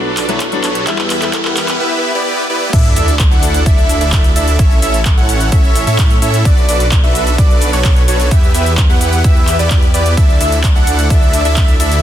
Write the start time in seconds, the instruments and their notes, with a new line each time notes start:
Already playing: detuned saw bass B1, supersaw synth D4 F#4 A4 B4 D5, riser
0.17 clap, open hi-hat
0.28 detuned saw bass B1, grand piano F#3 A3 B3 E4, supersaw synth D4 F#4 A4 B4 C#5, closed hi-hat
0.40 kick, clap, closed hi-hat
0.52 grand piano F#3 A3 B3 D4, closed hi-hat
0.64 detuned saw bass B1, supersaw synth D4 F#4 A4 B4 C#5, clap, open hi-hat
0.75 closed hi-hat
0.86 detuned saw bass E2, grand piano E3 G3 B3 E4, supersaw synth B3 E4 G4 B4 E5, kick, clap, closed hi-hat
0.99 clap
1.10 detuned saw bass E2, supersaw synth B3 E4 G4 B4 E5, clap, open hi-hat
1.21 grand piano E3 G3 B3 E4, clap, closed hi-hat
1.33 kick, clap, closed hi-hat
1.45 detuned saw bass E2, supersaw synth B3 E4 G4 B4 F#5, clap
1.56 grand piano E3 G3 B3 E4, clap, open hi-hat
1.68 clap, closed hi-hat
1.80 supersaw synth B3 E4 G4 B4 E5
2.15 supersaw synth B3 E4 G4 B4 D5
2.50 supersaw synth B3 E4 G4 B4 D5
2.73 detuned saw bass D2, supersaw synth D4 A4, analog synth lead E5, kick, closed hi-hat, crash, sub drop, shaker
2.85 shaker
2.96 detuned saw bass D2, supersaw synth D4 E4 A4 D5 E5, analog synth lead E5, open hi-hat, shaker
3.08 closed hi-hat, shaker
3.19 kick, clap, closed hi-hat, shaker
3.31 detuned saw bass D2, supersaw synth D4 E4 A4 D5 F#5, analog synth lead F#5, shaker
3.43 open hi-hat, shaker
3.54 closed hi-hat, shaker
3.66 detuned saw bass D2, supersaw synth D4 E4 A4 E5, analog synth lead E5, kick, closed hi-hat, shaker
3.78 shaker
3.89 open hi-hat, shaker
4.01 detuned saw bass D2, supersaw synth D4 E4 A4 D5 E5, analog synth lead E5, closed hi-hat, shaker
4.12 kick, clap, closed hi-hat, shaker
4.24 closed hi-hat, shaker
4.36 detuned saw bass D2, supersaw synth D4 E4 A4 D5 E5, analog synth lead E5, open hi-hat, shaker
4.48 closed hi-hat, shaker
4.59 detuned saw bass A1, supersaw synth C#4 E4 A4 C#5 E5, analog synth lead E5, kick, closed hi-hat, shaker
4.71 shaker
4.82 detuned saw bass A1, supersaw synth C#4 E4 A4 C#5 E5, analog synth lead E5, open hi-hat, shaker
4.94 closed hi-hat, shaker
5.05 kick, clap, closed hi-hat, shaker
5.17 detuned saw bass A1, supersaw synth C#4 E4 A4 C#5 F#5, analog synth lead F#5, shaker
5.29 open hi-hat, shaker
5.41 closed hi-hat, shaker
5.52 detuned saw bass A1, supersaw synth C#4 E4 A4 C#5 E5, analog synth lead E5, kick, closed hi-hat, shaker
5.64 shaker
5.75 open hi-hat, shaker
5.87 detuned saw bass A2, supersaw synth C#4 E4 A4 C#5 E5, analog synth lead E5, closed hi-hat, shaker
5.98 kick, clap, closed hi-hat, shaker
6.10 closed hi-hat, shaker
6.22 detuned saw bass A2, supersaw synth C#4 E4 A4 C#5 E5, analog synth lead E5, open hi-hat, shaker
6.34 closed hi-hat, shaker
6.45 detuned saw bass B1, supersaw synth D4 F#4 A4 B4 D5, analog synth lead D5, kick, closed hi-hat, shaker
6.58 shaker
6.68 detuned saw bass B1, supersaw synth D4 F#4 A4 B4 D5, analog synth lead D5, open hi-hat, shaker
6.80 closed hi-hat, shaker
6.92 kick, clap, closed hi-hat, shaker
7.03 detuned saw bass B1, supersaw synth D4 F#4 A4 B4 E5, analog synth lead E5, shaker
7.15 open hi-hat, shaker
7.27 closed hi-hat, shaker
7.38 detuned saw bass B1, supersaw synth D4 F#4 A4 B4 D5, analog synth lead D5, kick, closed hi-hat, shaker
7.51 shaker
7.62 open hi-hat, shaker
7.73 detuned saw bass B1, supersaw synth D4 F#4 A4 B4 C#5, analog synth lead C#5, closed hi-hat, shaker
7.85 kick, clap, closed hi-hat, shaker
7.96 closed hi-hat, shaker
8.08 detuned saw bass B1, supersaw synth D4 F#4 A4 B4 C#5, analog synth lead C#5, open hi-hat, shaker
8.20 closed hi-hat, shaker
8.31 detuned saw bass E2, supersaw synth B3 G4, analog synth lead E5, kick, closed hi-hat, shaker
8.43 shaker
8.54 detuned saw bass E2, supersaw synth B3 E4 G4 B4 E5, analog synth lead E5, open hi-hat, shaker
8.66 closed hi-hat, shaker
8.78 kick, clap, closed hi-hat, shaker
8.89 detuned saw bass E2, supersaw synth B3 E4 G4 B4 F#5, analog synth lead F#5, shaker
9.01 open hi-hat, shaker
9.13 closed hi-hat, shaker
9.24 detuned saw bass E2, supersaw synth B3 E4 G4 B4 E5, analog synth lead E5, kick, closed hi-hat, shaker
9.36 shaker
9.47 clap, open hi-hat, shaker
9.59 detuned saw bass E2, supersaw synth B3 E4 G4 B4 D5, analog synth lead D5, closed hi-hat, shaker
9.70 kick, clap, closed hi-hat, shaker
9.82 closed hi-hat, shaker
9.94 detuned saw bass E2, supersaw synth B3 E4 G4 B4 D5, analog synth lead D5, open hi-hat, shaker
10.06 closed hi-hat, shaker
10.17 detuned saw bass D2, supersaw synth D4 E4 A4 D5 E5, analog synth lead E5, kick, closed hi-hat, ride, shaker
10.30 shaker
10.40 detuned saw bass D2, supersaw synth D4 E4 A4 D5 E5, analog synth lead E5, open hi-hat, ride, shaker
10.52 closed hi-hat, shaker
10.64 kick, clap, closed hi-hat, ride, shaker
10.75 detuned saw bass D2, supersaw synth D4 E4 A4 D5 F#5, analog synth lead F#5, shaker
10.87 open hi-hat, ride, shaker
10.99 closed hi-hat, shaker
11.10 detuned saw bass D2, supersaw synth D4 E4 A4 D5 E5, analog synth lead E5, kick, closed hi-hat, ride, shaker
11.22 shaker
11.34 open hi-hat, ride, shaker
11.45 detuned saw bass D2, supersaw synth D4 E4 A4 D5 E5, analog synth lead E5, closed hi-hat, shaker
11.56 kick, clap, closed hi-hat, ride, shaker
11.68 closed hi-hat, shaker
11.80 detuned saw bass D2, supersaw synth D4 E4 A4 D5 E5, analog synth lead E5, open hi-hat, ride, shaker
11.92 closed hi-hat, shaker